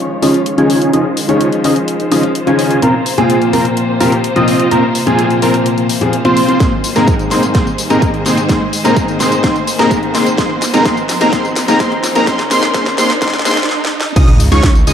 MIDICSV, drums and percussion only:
0, 0, Header, 1, 2, 480
1, 0, Start_track
1, 0, Key_signature, -4, "major"
1, 0, Tempo, 472441
1, 949, Time_signature, 4, 2, 24, 8
1, 15172, End_track
2, 0, Start_track
2, 0, Title_t, "Drums"
2, 229, Note_on_c, 9, 46, 105
2, 331, Note_off_c, 9, 46, 0
2, 348, Note_on_c, 9, 42, 52
2, 450, Note_off_c, 9, 42, 0
2, 468, Note_on_c, 9, 42, 81
2, 570, Note_off_c, 9, 42, 0
2, 589, Note_on_c, 9, 42, 36
2, 691, Note_off_c, 9, 42, 0
2, 709, Note_on_c, 9, 46, 98
2, 811, Note_off_c, 9, 46, 0
2, 829, Note_on_c, 9, 42, 55
2, 931, Note_off_c, 9, 42, 0
2, 950, Note_on_c, 9, 42, 75
2, 1051, Note_off_c, 9, 42, 0
2, 1189, Note_on_c, 9, 46, 109
2, 1290, Note_off_c, 9, 46, 0
2, 1310, Note_on_c, 9, 42, 53
2, 1411, Note_off_c, 9, 42, 0
2, 1429, Note_on_c, 9, 42, 80
2, 1530, Note_off_c, 9, 42, 0
2, 1549, Note_on_c, 9, 42, 35
2, 1651, Note_off_c, 9, 42, 0
2, 1669, Note_on_c, 9, 46, 105
2, 1771, Note_off_c, 9, 46, 0
2, 1789, Note_on_c, 9, 42, 50
2, 1891, Note_off_c, 9, 42, 0
2, 1909, Note_on_c, 9, 42, 78
2, 2011, Note_off_c, 9, 42, 0
2, 2030, Note_on_c, 9, 42, 35
2, 2132, Note_off_c, 9, 42, 0
2, 2150, Note_on_c, 9, 46, 114
2, 2251, Note_off_c, 9, 46, 0
2, 2270, Note_on_c, 9, 42, 49
2, 2371, Note_off_c, 9, 42, 0
2, 2390, Note_on_c, 9, 42, 78
2, 2491, Note_off_c, 9, 42, 0
2, 2510, Note_on_c, 9, 42, 35
2, 2612, Note_off_c, 9, 42, 0
2, 2629, Note_on_c, 9, 46, 98
2, 2731, Note_off_c, 9, 46, 0
2, 2749, Note_on_c, 9, 42, 55
2, 2851, Note_off_c, 9, 42, 0
2, 2869, Note_on_c, 9, 42, 79
2, 2971, Note_off_c, 9, 42, 0
2, 3109, Note_on_c, 9, 46, 109
2, 3211, Note_off_c, 9, 46, 0
2, 3230, Note_on_c, 9, 42, 53
2, 3332, Note_off_c, 9, 42, 0
2, 3350, Note_on_c, 9, 42, 76
2, 3451, Note_off_c, 9, 42, 0
2, 3471, Note_on_c, 9, 42, 34
2, 3572, Note_off_c, 9, 42, 0
2, 3590, Note_on_c, 9, 46, 101
2, 3691, Note_off_c, 9, 46, 0
2, 3710, Note_on_c, 9, 42, 50
2, 3812, Note_off_c, 9, 42, 0
2, 3830, Note_on_c, 9, 42, 73
2, 3931, Note_off_c, 9, 42, 0
2, 4070, Note_on_c, 9, 46, 109
2, 4171, Note_off_c, 9, 46, 0
2, 4189, Note_on_c, 9, 42, 48
2, 4290, Note_off_c, 9, 42, 0
2, 4309, Note_on_c, 9, 42, 77
2, 4411, Note_off_c, 9, 42, 0
2, 4429, Note_on_c, 9, 42, 33
2, 4531, Note_off_c, 9, 42, 0
2, 4549, Note_on_c, 9, 46, 98
2, 4651, Note_off_c, 9, 46, 0
2, 4669, Note_on_c, 9, 42, 53
2, 4771, Note_off_c, 9, 42, 0
2, 4790, Note_on_c, 9, 42, 73
2, 4891, Note_off_c, 9, 42, 0
2, 5030, Note_on_c, 9, 46, 106
2, 5131, Note_off_c, 9, 46, 0
2, 5150, Note_on_c, 9, 42, 52
2, 5252, Note_off_c, 9, 42, 0
2, 5270, Note_on_c, 9, 42, 76
2, 5371, Note_off_c, 9, 42, 0
2, 5390, Note_on_c, 9, 42, 33
2, 5491, Note_off_c, 9, 42, 0
2, 5509, Note_on_c, 9, 46, 106
2, 5611, Note_off_c, 9, 46, 0
2, 5629, Note_on_c, 9, 42, 52
2, 5731, Note_off_c, 9, 42, 0
2, 5749, Note_on_c, 9, 42, 77
2, 5851, Note_off_c, 9, 42, 0
2, 5869, Note_on_c, 9, 42, 34
2, 5971, Note_off_c, 9, 42, 0
2, 5989, Note_on_c, 9, 46, 116
2, 6091, Note_off_c, 9, 46, 0
2, 6109, Note_on_c, 9, 42, 48
2, 6211, Note_off_c, 9, 42, 0
2, 6229, Note_on_c, 9, 42, 76
2, 6330, Note_off_c, 9, 42, 0
2, 6349, Note_on_c, 9, 42, 35
2, 6450, Note_off_c, 9, 42, 0
2, 6469, Note_on_c, 9, 46, 104
2, 6570, Note_off_c, 9, 46, 0
2, 6589, Note_on_c, 9, 42, 50
2, 6691, Note_off_c, 9, 42, 0
2, 6709, Note_on_c, 9, 36, 109
2, 6709, Note_on_c, 9, 38, 48
2, 6709, Note_on_c, 9, 42, 74
2, 6711, Note_on_c, 9, 54, 44
2, 6811, Note_off_c, 9, 36, 0
2, 6811, Note_off_c, 9, 38, 0
2, 6811, Note_off_c, 9, 42, 0
2, 6813, Note_off_c, 9, 54, 0
2, 6949, Note_on_c, 9, 46, 105
2, 6951, Note_on_c, 9, 54, 80
2, 7050, Note_off_c, 9, 46, 0
2, 7053, Note_off_c, 9, 54, 0
2, 7069, Note_on_c, 9, 38, 43
2, 7069, Note_on_c, 9, 42, 51
2, 7071, Note_on_c, 9, 54, 32
2, 7171, Note_off_c, 9, 38, 0
2, 7171, Note_off_c, 9, 42, 0
2, 7173, Note_off_c, 9, 54, 0
2, 7189, Note_on_c, 9, 36, 117
2, 7189, Note_on_c, 9, 42, 76
2, 7191, Note_on_c, 9, 54, 44
2, 7291, Note_off_c, 9, 36, 0
2, 7291, Note_off_c, 9, 42, 0
2, 7293, Note_off_c, 9, 54, 0
2, 7309, Note_on_c, 9, 42, 35
2, 7311, Note_on_c, 9, 54, 29
2, 7410, Note_off_c, 9, 42, 0
2, 7413, Note_off_c, 9, 54, 0
2, 7428, Note_on_c, 9, 38, 51
2, 7428, Note_on_c, 9, 46, 104
2, 7430, Note_on_c, 9, 54, 77
2, 7530, Note_off_c, 9, 38, 0
2, 7530, Note_off_c, 9, 46, 0
2, 7532, Note_off_c, 9, 54, 0
2, 7548, Note_on_c, 9, 42, 51
2, 7550, Note_on_c, 9, 54, 34
2, 7650, Note_off_c, 9, 42, 0
2, 7652, Note_off_c, 9, 54, 0
2, 7668, Note_on_c, 9, 38, 54
2, 7668, Note_on_c, 9, 42, 73
2, 7669, Note_on_c, 9, 36, 121
2, 7670, Note_on_c, 9, 54, 45
2, 7769, Note_off_c, 9, 38, 0
2, 7769, Note_off_c, 9, 42, 0
2, 7770, Note_off_c, 9, 36, 0
2, 7771, Note_off_c, 9, 54, 0
2, 7791, Note_on_c, 9, 54, 31
2, 7892, Note_off_c, 9, 54, 0
2, 7908, Note_on_c, 9, 46, 111
2, 7910, Note_on_c, 9, 54, 79
2, 8010, Note_off_c, 9, 46, 0
2, 8012, Note_off_c, 9, 54, 0
2, 8029, Note_on_c, 9, 42, 48
2, 8031, Note_on_c, 9, 54, 33
2, 8131, Note_off_c, 9, 42, 0
2, 8133, Note_off_c, 9, 54, 0
2, 8149, Note_on_c, 9, 36, 120
2, 8149, Note_on_c, 9, 42, 79
2, 8151, Note_on_c, 9, 54, 46
2, 8250, Note_off_c, 9, 36, 0
2, 8251, Note_off_c, 9, 42, 0
2, 8253, Note_off_c, 9, 54, 0
2, 8269, Note_on_c, 9, 42, 34
2, 8370, Note_off_c, 9, 42, 0
2, 8389, Note_on_c, 9, 38, 55
2, 8389, Note_on_c, 9, 46, 95
2, 8391, Note_on_c, 9, 54, 73
2, 8491, Note_off_c, 9, 38, 0
2, 8491, Note_off_c, 9, 46, 0
2, 8493, Note_off_c, 9, 54, 0
2, 8509, Note_on_c, 9, 42, 49
2, 8512, Note_on_c, 9, 54, 35
2, 8611, Note_off_c, 9, 42, 0
2, 8613, Note_off_c, 9, 54, 0
2, 8629, Note_on_c, 9, 36, 107
2, 8630, Note_on_c, 9, 38, 59
2, 8630, Note_on_c, 9, 42, 81
2, 8632, Note_on_c, 9, 54, 47
2, 8730, Note_off_c, 9, 36, 0
2, 8731, Note_off_c, 9, 38, 0
2, 8731, Note_off_c, 9, 42, 0
2, 8733, Note_off_c, 9, 54, 0
2, 8869, Note_on_c, 9, 46, 105
2, 8872, Note_on_c, 9, 54, 78
2, 8971, Note_off_c, 9, 46, 0
2, 8973, Note_off_c, 9, 54, 0
2, 8989, Note_on_c, 9, 42, 55
2, 8992, Note_on_c, 9, 54, 35
2, 9091, Note_off_c, 9, 42, 0
2, 9093, Note_off_c, 9, 54, 0
2, 9109, Note_on_c, 9, 36, 113
2, 9109, Note_on_c, 9, 42, 80
2, 9111, Note_on_c, 9, 54, 45
2, 9210, Note_off_c, 9, 36, 0
2, 9210, Note_off_c, 9, 42, 0
2, 9212, Note_off_c, 9, 54, 0
2, 9229, Note_on_c, 9, 42, 36
2, 9231, Note_on_c, 9, 54, 33
2, 9330, Note_off_c, 9, 42, 0
2, 9332, Note_off_c, 9, 54, 0
2, 9348, Note_on_c, 9, 38, 62
2, 9348, Note_on_c, 9, 46, 101
2, 9351, Note_on_c, 9, 54, 80
2, 9450, Note_off_c, 9, 38, 0
2, 9450, Note_off_c, 9, 46, 0
2, 9452, Note_off_c, 9, 54, 0
2, 9469, Note_on_c, 9, 42, 55
2, 9471, Note_on_c, 9, 54, 35
2, 9570, Note_off_c, 9, 42, 0
2, 9572, Note_off_c, 9, 54, 0
2, 9588, Note_on_c, 9, 36, 117
2, 9589, Note_on_c, 9, 38, 68
2, 9589, Note_on_c, 9, 42, 80
2, 9591, Note_on_c, 9, 54, 45
2, 9690, Note_off_c, 9, 36, 0
2, 9690, Note_off_c, 9, 38, 0
2, 9690, Note_off_c, 9, 42, 0
2, 9693, Note_off_c, 9, 54, 0
2, 9709, Note_on_c, 9, 42, 35
2, 9711, Note_on_c, 9, 54, 32
2, 9811, Note_off_c, 9, 42, 0
2, 9813, Note_off_c, 9, 54, 0
2, 9829, Note_on_c, 9, 46, 110
2, 9831, Note_on_c, 9, 54, 84
2, 9931, Note_off_c, 9, 46, 0
2, 9933, Note_off_c, 9, 54, 0
2, 9949, Note_on_c, 9, 38, 61
2, 9949, Note_on_c, 9, 42, 51
2, 9952, Note_on_c, 9, 54, 34
2, 10051, Note_off_c, 9, 38, 0
2, 10051, Note_off_c, 9, 42, 0
2, 10053, Note_off_c, 9, 54, 0
2, 10068, Note_on_c, 9, 36, 116
2, 10069, Note_on_c, 9, 42, 81
2, 10071, Note_on_c, 9, 54, 48
2, 10170, Note_off_c, 9, 36, 0
2, 10170, Note_off_c, 9, 42, 0
2, 10172, Note_off_c, 9, 54, 0
2, 10189, Note_on_c, 9, 42, 36
2, 10290, Note_off_c, 9, 42, 0
2, 10309, Note_on_c, 9, 38, 65
2, 10309, Note_on_c, 9, 46, 99
2, 10311, Note_on_c, 9, 54, 78
2, 10410, Note_off_c, 9, 38, 0
2, 10410, Note_off_c, 9, 46, 0
2, 10413, Note_off_c, 9, 54, 0
2, 10429, Note_on_c, 9, 42, 52
2, 10431, Note_on_c, 9, 54, 36
2, 10530, Note_off_c, 9, 42, 0
2, 10532, Note_off_c, 9, 54, 0
2, 10549, Note_on_c, 9, 36, 109
2, 10549, Note_on_c, 9, 38, 74
2, 10549, Note_on_c, 9, 42, 83
2, 10551, Note_on_c, 9, 54, 46
2, 10650, Note_off_c, 9, 36, 0
2, 10651, Note_off_c, 9, 38, 0
2, 10651, Note_off_c, 9, 42, 0
2, 10653, Note_off_c, 9, 54, 0
2, 10788, Note_on_c, 9, 38, 81
2, 10788, Note_on_c, 9, 46, 103
2, 10790, Note_on_c, 9, 54, 83
2, 10890, Note_off_c, 9, 38, 0
2, 10890, Note_off_c, 9, 46, 0
2, 10892, Note_off_c, 9, 54, 0
2, 10908, Note_on_c, 9, 42, 59
2, 10911, Note_on_c, 9, 54, 35
2, 11010, Note_off_c, 9, 42, 0
2, 11012, Note_off_c, 9, 54, 0
2, 11028, Note_on_c, 9, 36, 114
2, 11029, Note_on_c, 9, 38, 79
2, 11029, Note_on_c, 9, 42, 82
2, 11031, Note_on_c, 9, 54, 45
2, 11130, Note_off_c, 9, 36, 0
2, 11130, Note_off_c, 9, 38, 0
2, 11130, Note_off_c, 9, 42, 0
2, 11132, Note_off_c, 9, 54, 0
2, 11149, Note_on_c, 9, 42, 37
2, 11151, Note_on_c, 9, 54, 32
2, 11250, Note_off_c, 9, 42, 0
2, 11252, Note_off_c, 9, 54, 0
2, 11268, Note_on_c, 9, 38, 82
2, 11268, Note_on_c, 9, 46, 101
2, 11270, Note_on_c, 9, 54, 80
2, 11369, Note_off_c, 9, 38, 0
2, 11369, Note_off_c, 9, 46, 0
2, 11372, Note_off_c, 9, 54, 0
2, 11388, Note_on_c, 9, 42, 57
2, 11390, Note_on_c, 9, 54, 36
2, 11490, Note_off_c, 9, 42, 0
2, 11492, Note_off_c, 9, 54, 0
2, 11508, Note_on_c, 9, 38, 82
2, 11508, Note_on_c, 9, 42, 84
2, 11509, Note_on_c, 9, 36, 117
2, 11510, Note_on_c, 9, 54, 47
2, 11610, Note_off_c, 9, 36, 0
2, 11610, Note_off_c, 9, 38, 0
2, 11610, Note_off_c, 9, 42, 0
2, 11612, Note_off_c, 9, 54, 0
2, 11631, Note_on_c, 9, 54, 34
2, 11732, Note_off_c, 9, 54, 0
2, 11748, Note_on_c, 9, 38, 88
2, 11748, Note_on_c, 9, 46, 104
2, 11750, Note_on_c, 9, 54, 83
2, 11850, Note_off_c, 9, 38, 0
2, 11850, Note_off_c, 9, 46, 0
2, 11852, Note_off_c, 9, 54, 0
2, 11869, Note_on_c, 9, 42, 54
2, 11871, Note_on_c, 9, 54, 35
2, 11971, Note_off_c, 9, 42, 0
2, 11973, Note_off_c, 9, 54, 0
2, 11989, Note_on_c, 9, 36, 113
2, 11989, Note_on_c, 9, 38, 88
2, 11989, Note_on_c, 9, 42, 83
2, 11991, Note_on_c, 9, 54, 49
2, 12090, Note_off_c, 9, 36, 0
2, 12091, Note_off_c, 9, 38, 0
2, 12091, Note_off_c, 9, 42, 0
2, 12093, Note_off_c, 9, 54, 0
2, 12108, Note_on_c, 9, 42, 36
2, 12210, Note_off_c, 9, 42, 0
2, 12228, Note_on_c, 9, 38, 83
2, 12228, Note_on_c, 9, 46, 98
2, 12230, Note_on_c, 9, 54, 83
2, 12329, Note_off_c, 9, 38, 0
2, 12329, Note_off_c, 9, 46, 0
2, 12332, Note_off_c, 9, 54, 0
2, 12349, Note_on_c, 9, 42, 58
2, 12351, Note_on_c, 9, 54, 36
2, 12450, Note_off_c, 9, 42, 0
2, 12452, Note_off_c, 9, 54, 0
2, 12468, Note_on_c, 9, 36, 114
2, 12468, Note_on_c, 9, 38, 91
2, 12468, Note_on_c, 9, 42, 85
2, 12471, Note_on_c, 9, 54, 48
2, 12570, Note_off_c, 9, 36, 0
2, 12570, Note_off_c, 9, 38, 0
2, 12570, Note_off_c, 9, 42, 0
2, 12572, Note_off_c, 9, 54, 0
2, 12588, Note_on_c, 9, 38, 80
2, 12588, Note_on_c, 9, 42, 41
2, 12590, Note_on_c, 9, 54, 33
2, 12690, Note_off_c, 9, 38, 0
2, 12690, Note_off_c, 9, 42, 0
2, 12692, Note_off_c, 9, 54, 0
2, 12709, Note_on_c, 9, 38, 96
2, 12709, Note_on_c, 9, 46, 108
2, 12711, Note_on_c, 9, 54, 87
2, 12810, Note_off_c, 9, 38, 0
2, 12810, Note_off_c, 9, 46, 0
2, 12813, Note_off_c, 9, 54, 0
2, 12829, Note_on_c, 9, 38, 89
2, 12829, Note_on_c, 9, 42, 58
2, 12831, Note_on_c, 9, 54, 37
2, 12930, Note_off_c, 9, 38, 0
2, 12930, Note_off_c, 9, 42, 0
2, 12932, Note_off_c, 9, 54, 0
2, 12948, Note_on_c, 9, 38, 94
2, 12948, Note_on_c, 9, 42, 85
2, 12949, Note_on_c, 9, 36, 112
2, 12950, Note_on_c, 9, 54, 49
2, 13050, Note_off_c, 9, 36, 0
2, 13050, Note_off_c, 9, 38, 0
2, 13050, Note_off_c, 9, 42, 0
2, 13052, Note_off_c, 9, 54, 0
2, 13069, Note_on_c, 9, 38, 83
2, 13069, Note_on_c, 9, 42, 39
2, 13071, Note_on_c, 9, 54, 31
2, 13170, Note_off_c, 9, 38, 0
2, 13170, Note_off_c, 9, 42, 0
2, 13172, Note_off_c, 9, 54, 0
2, 13188, Note_on_c, 9, 38, 98
2, 13188, Note_on_c, 9, 46, 97
2, 13190, Note_on_c, 9, 54, 82
2, 13290, Note_off_c, 9, 38, 0
2, 13290, Note_off_c, 9, 46, 0
2, 13292, Note_off_c, 9, 54, 0
2, 13309, Note_on_c, 9, 38, 89
2, 13309, Note_on_c, 9, 42, 58
2, 13311, Note_on_c, 9, 54, 36
2, 13411, Note_off_c, 9, 38, 0
2, 13411, Note_off_c, 9, 42, 0
2, 13413, Note_off_c, 9, 54, 0
2, 13428, Note_on_c, 9, 36, 114
2, 13429, Note_on_c, 9, 38, 102
2, 13429, Note_on_c, 9, 42, 86
2, 13431, Note_on_c, 9, 54, 46
2, 13488, Note_off_c, 9, 38, 0
2, 13488, Note_on_c, 9, 38, 87
2, 13530, Note_off_c, 9, 36, 0
2, 13530, Note_off_c, 9, 42, 0
2, 13533, Note_off_c, 9, 54, 0
2, 13548, Note_off_c, 9, 38, 0
2, 13548, Note_on_c, 9, 38, 86
2, 13548, Note_on_c, 9, 42, 39
2, 13550, Note_on_c, 9, 54, 33
2, 13608, Note_off_c, 9, 38, 0
2, 13608, Note_on_c, 9, 38, 87
2, 13650, Note_off_c, 9, 42, 0
2, 13652, Note_off_c, 9, 54, 0
2, 13668, Note_off_c, 9, 38, 0
2, 13668, Note_on_c, 9, 38, 104
2, 13668, Note_on_c, 9, 46, 107
2, 13670, Note_on_c, 9, 54, 84
2, 13728, Note_off_c, 9, 38, 0
2, 13728, Note_on_c, 9, 38, 97
2, 13770, Note_off_c, 9, 46, 0
2, 13772, Note_off_c, 9, 54, 0
2, 13788, Note_off_c, 9, 38, 0
2, 13788, Note_on_c, 9, 38, 91
2, 13788, Note_on_c, 9, 42, 57
2, 13791, Note_on_c, 9, 54, 34
2, 13849, Note_off_c, 9, 38, 0
2, 13849, Note_on_c, 9, 38, 94
2, 13890, Note_off_c, 9, 42, 0
2, 13892, Note_off_c, 9, 54, 0
2, 13909, Note_off_c, 9, 38, 0
2, 13909, Note_on_c, 9, 38, 70
2, 14011, Note_off_c, 9, 38, 0
2, 14068, Note_on_c, 9, 38, 85
2, 14170, Note_off_c, 9, 38, 0
2, 14229, Note_on_c, 9, 38, 99
2, 14331, Note_off_c, 9, 38, 0
2, 14388, Note_on_c, 9, 36, 117
2, 14389, Note_on_c, 9, 42, 101
2, 14389, Note_on_c, 9, 49, 105
2, 14391, Note_on_c, 9, 54, 46
2, 14490, Note_off_c, 9, 36, 0
2, 14491, Note_off_c, 9, 42, 0
2, 14491, Note_off_c, 9, 49, 0
2, 14493, Note_off_c, 9, 54, 0
2, 14510, Note_on_c, 9, 42, 41
2, 14611, Note_off_c, 9, 42, 0
2, 14629, Note_on_c, 9, 46, 112
2, 14632, Note_on_c, 9, 54, 82
2, 14731, Note_off_c, 9, 46, 0
2, 14733, Note_off_c, 9, 54, 0
2, 14750, Note_on_c, 9, 42, 43
2, 14752, Note_on_c, 9, 54, 33
2, 14852, Note_off_c, 9, 42, 0
2, 14854, Note_off_c, 9, 54, 0
2, 14868, Note_on_c, 9, 36, 114
2, 14869, Note_on_c, 9, 38, 127
2, 14870, Note_on_c, 9, 42, 100
2, 14872, Note_on_c, 9, 54, 45
2, 14970, Note_off_c, 9, 36, 0
2, 14970, Note_off_c, 9, 38, 0
2, 14971, Note_off_c, 9, 42, 0
2, 14973, Note_off_c, 9, 54, 0
2, 14989, Note_on_c, 9, 42, 42
2, 14991, Note_on_c, 9, 54, 32
2, 15091, Note_off_c, 9, 42, 0
2, 15093, Note_off_c, 9, 54, 0
2, 15109, Note_on_c, 9, 46, 106
2, 15111, Note_on_c, 9, 54, 78
2, 15172, Note_off_c, 9, 46, 0
2, 15172, Note_off_c, 9, 54, 0
2, 15172, End_track
0, 0, End_of_file